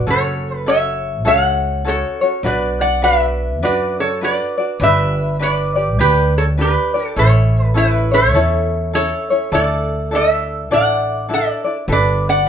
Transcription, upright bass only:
0, 0, Header, 1, 2, 480
1, 0, Start_track
1, 0, Key_signature, 2, "major"
1, 0, Tempo, 589971
1, 59, Time_signature, 4, 2, 24, 8
1, 10160, End_track
2, 0, Start_track
2, 0, Title_t, "Upright bass"
2, 0, Program_c, 0, 32
2, 58, Note_on_c, 0, 30, 101
2, 1017, Note_off_c, 0, 30, 0
2, 1017, Note_on_c, 0, 37, 91
2, 1644, Note_off_c, 0, 37, 0
2, 1977, Note_on_c, 0, 35, 104
2, 2941, Note_off_c, 0, 35, 0
2, 2941, Note_on_c, 0, 42, 87
2, 3566, Note_off_c, 0, 42, 0
2, 3902, Note_on_c, 0, 31, 115
2, 4867, Note_off_c, 0, 31, 0
2, 4867, Note_on_c, 0, 38, 92
2, 5491, Note_off_c, 0, 38, 0
2, 5829, Note_on_c, 0, 33, 107
2, 6791, Note_off_c, 0, 33, 0
2, 6791, Note_on_c, 0, 40, 92
2, 7413, Note_off_c, 0, 40, 0
2, 7744, Note_on_c, 0, 38, 104
2, 8707, Note_off_c, 0, 38, 0
2, 8707, Note_on_c, 0, 33, 88
2, 9330, Note_off_c, 0, 33, 0
2, 9664, Note_on_c, 0, 31, 104
2, 10160, Note_off_c, 0, 31, 0
2, 10160, End_track
0, 0, End_of_file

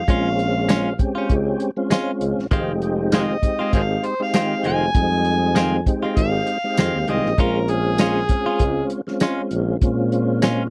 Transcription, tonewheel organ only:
0, 0, Header, 1, 2, 480
1, 0, Start_track
1, 0, Tempo, 608519
1, 65, Time_signature, 4, 2, 24, 8
1, 8441, End_track
2, 0, Start_track
2, 0, Title_t, "Tonewheel organ"
2, 0, Program_c, 0, 16
2, 59, Note_on_c, 0, 56, 91
2, 62, Note_on_c, 0, 60, 83
2, 66, Note_on_c, 0, 61, 68
2, 71, Note_on_c, 0, 65, 96
2, 735, Note_off_c, 0, 56, 0
2, 736, Note_off_c, 0, 60, 0
2, 738, Note_off_c, 0, 61, 0
2, 740, Note_off_c, 0, 65, 0
2, 776, Note_on_c, 0, 56, 76
2, 780, Note_on_c, 0, 60, 81
2, 784, Note_on_c, 0, 61, 68
2, 789, Note_on_c, 0, 67, 100
2, 1344, Note_off_c, 0, 56, 0
2, 1346, Note_off_c, 0, 60, 0
2, 1348, Note_off_c, 0, 61, 0
2, 1351, Note_off_c, 0, 67, 0
2, 1393, Note_on_c, 0, 56, 78
2, 1396, Note_on_c, 0, 60, 74
2, 1400, Note_on_c, 0, 61, 83
2, 1401, Note_on_c, 0, 65, 100
2, 1943, Note_off_c, 0, 56, 0
2, 1945, Note_off_c, 0, 60, 0
2, 1947, Note_off_c, 0, 61, 0
2, 1947, Note_off_c, 0, 65, 0
2, 1984, Note_on_c, 0, 56, 102
2, 1987, Note_on_c, 0, 60, 94
2, 1991, Note_on_c, 0, 63, 103
2, 1994, Note_on_c, 0, 67, 110
2, 2657, Note_off_c, 0, 56, 0
2, 2659, Note_off_c, 0, 60, 0
2, 2661, Note_off_c, 0, 63, 0
2, 2662, Note_off_c, 0, 67, 0
2, 2701, Note_on_c, 0, 56, 70
2, 2702, Note_on_c, 0, 60, 63
2, 2706, Note_on_c, 0, 63, 68
2, 2711, Note_on_c, 0, 67, 74
2, 3267, Note_off_c, 0, 56, 0
2, 3268, Note_off_c, 0, 60, 0
2, 3270, Note_off_c, 0, 63, 0
2, 3272, Note_off_c, 0, 67, 0
2, 3311, Note_on_c, 0, 56, 68
2, 3314, Note_on_c, 0, 60, 66
2, 3314, Note_on_c, 0, 63, 69
2, 3321, Note_on_c, 0, 67, 83
2, 3863, Note_off_c, 0, 56, 0
2, 3864, Note_off_c, 0, 60, 0
2, 3864, Note_off_c, 0, 63, 0
2, 3868, Note_off_c, 0, 67, 0
2, 3906, Note_on_c, 0, 56, 90
2, 3910, Note_on_c, 0, 60, 69
2, 3913, Note_on_c, 0, 63, 77
2, 3916, Note_on_c, 0, 55, 85
2, 4578, Note_off_c, 0, 56, 0
2, 4581, Note_off_c, 0, 60, 0
2, 4582, Note_off_c, 0, 63, 0
2, 4584, Note_off_c, 0, 55, 0
2, 4624, Note_on_c, 0, 56, 73
2, 4627, Note_on_c, 0, 60, 76
2, 4629, Note_on_c, 0, 63, 73
2, 4630, Note_on_c, 0, 67, 86
2, 5189, Note_off_c, 0, 56, 0
2, 5190, Note_off_c, 0, 60, 0
2, 5191, Note_off_c, 0, 63, 0
2, 5192, Note_off_c, 0, 67, 0
2, 5238, Note_on_c, 0, 56, 70
2, 5241, Note_on_c, 0, 60, 64
2, 5243, Note_on_c, 0, 63, 65
2, 5250, Note_on_c, 0, 67, 76
2, 5786, Note_off_c, 0, 56, 0
2, 5788, Note_off_c, 0, 60, 0
2, 5789, Note_off_c, 0, 63, 0
2, 5792, Note_off_c, 0, 67, 0
2, 5817, Note_on_c, 0, 56, 84
2, 5822, Note_on_c, 0, 61, 78
2, 5824, Note_on_c, 0, 60, 73
2, 5828, Note_on_c, 0, 65, 88
2, 6494, Note_off_c, 0, 56, 0
2, 6497, Note_off_c, 0, 61, 0
2, 6498, Note_off_c, 0, 60, 0
2, 6499, Note_off_c, 0, 65, 0
2, 6542, Note_on_c, 0, 56, 73
2, 6542, Note_on_c, 0, 60, 63
2, 6542, Note_on_c, 0, 61, 62
2, 6549, Note_on_c, 0, 65, 73
2, 7107, Note_off_c, 0, 56, 0
2, 7107, Note_off_c, 0, 60, 0
2, 7108, Note_off_c, 0, 61, 0
2, 7111, Note_off_c, 0, 65, 0
2, 7153, Note_on_c, 0, 56, 86
2, 7157, Note_on_c, 0, 60, 89
2, 7161, Note_on_c, 0, 61, 74
2, 7161, Note_on_c, 0, 65, 91
2, 7703, Note_off_c, 0, 56, 0
2, 7705, Note_off_c, 0, 60, 0
2, 7707, Note_off_c, 0, 61, 0
2, 7707, Note_off_c, 0, 65, 0
2, 7744, Note_on_c, 0, 56, 104
2, 7747, Note_on_c, 0, 60, 96
2, 7750, Note_on_c, 0, 61, 93
2, 7753, Note_on_c, 0, 65, 99
2, 8416, Note_off_c, 0, 56, 0
2, 8418, Note_off_c, 0, 60, 0
2, 8419, Note_off_c, 0, 61, 0
2, 8421, Note_off_c, 0, 65, 0
2, 8441, End_track
0, 0, End_of_file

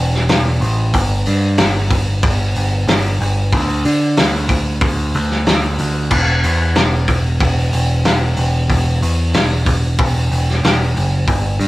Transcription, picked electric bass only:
0, 0, Header, 1, 2, 480
1, 0, Start_track
1, 0, Tempo, 645856
1, 697, Time_signature, 4, 2, 24, 8
1, 8679, End_track
2, 0, Start_track
2, 0, Title_t, "Picked electric bass"
2, 0, Program_c, 0, 34
2, 0, Note_on_c, 0, 28, 85
2, 204, Note_off_c, 0, 28, 0
2, 217, Note_on_c, 0, 28, 97
2, 446, Note_off_c, 0, 28, 0
2, 454, Note_on_c, 0, 33, 94
2, 685, Note_off_c, 0, 33, 0
2, 699, Note_on_c, 0, 31, 106
2, 928, Note_off_c, 0, 31, 0
2, 945, Note_on_c, 0, 43, 79
2, 1171, Note_off_c, 0, 43, 0
2, 1180, Note_on_c, 0, 31, 80
2, 1639, Note_off_c, 0, 31, 0
2, 1661, Note_on_c, 0, 31, 85
2, 1889, Note_off_c, 0, 31, 0
2, 1906, Note_on_c, 0, 31, 83
2, 2132, Note_off_c, 0, 31, 0
2, 2137, Note_on_c, 0, 31, 88
2, 2368, Note_off_c, 0, 31, 0
2, 2383, Note_on_c, 0, 31, 95
2, 2611, Note_off_c, 0, 31, 0
2, 2626, Note_on_c, 0, 38, 105
2, 2853, Note_off_c, 0, 38, 0
2, 2862, Note_on_c, 0, 50, 80
2, 3090, Note_off_c, 0, 50, 0
2, 3106, Note_on_c, 0, 38, 80
2, 3563, Note_off_c, 0, 38, 0
2, 3579, Note_on_c, 0, 38, 88
2, 3809, Note_off_c, 0, 38, 0
2, 3828, Note_on_c, 0, 38, 90
2, 4054, Note_off_c, 0, 38, 0
2, 4071, Note_on_c, 0, 38, 80
2, 4296, Note_off_c, 0, 38, 0
2, 4310, Note_on_c, 0, 38, 88
2, 4535, Note_off_c, 0, 38, 0
2, 4546, Note_on_c, 0, 28, 97
2, 4773, Note_off_c, 0, 28, 0
2, 4790, Note_on_c, 0, 40, 80
2, 5016, Note_off_c, 0, 40, 0
2, 5031, Note_on_c, 0, 28, 87
2, 5486, Note_off_c, 0, 28, 0
2, 5506, Note_on_c, 0, 28, 92
2, 5733, Note_off_c, 0, 28, 0
2, 5746, Note_on_c, 0, 28, 88
2, 5974, Note_off_c, 0, 28, 0
2, 5987, Note_on_c, 0, 28, 88
2, 6214, Note_off_c, 0, 28, 0
2, 6223, Note_on_c, 0, 28, 93
2, 6452, Note_off_c, 0, 28, 0
2, 6467, Note_on_c, 0, 28, 97
2, 6694, Note_off_c, 0, 28, 0
2, 6707, Note_on_c, 0, 40, 85
2, 6934, Note_off_c, 0, 40, 0
2, 6944, Note_on_c, 0, 28, 77
2, 7401, Note_off_c, 0, 28, 0
2, 7423, Note_on_c, 0, 28, 90
2, 7651, Note_off_c, 0, 28, 0
2, 7666, Note_on_c, 0, 28, 84
2, 7892, Note_off_c, 0, 28, 0
2, 7903, Note_on_c, 0, 28, 92
2, 8131, Note_off_c, 0, 28, 0
2, 8150, Note_on_c, 0, 30, 91
2, 8374, Note_off_c, 0, 30, 0
2, 8386, Note_on_c, 0, 31, 106
2, 8611, Note_off_c, 0, 31, 0
2, 8618, Note_on_c, 0, 43, 81
2, 8679, Note_off_c, 0, 43, 0
2, 8679, End_track
0, 0, End_of_file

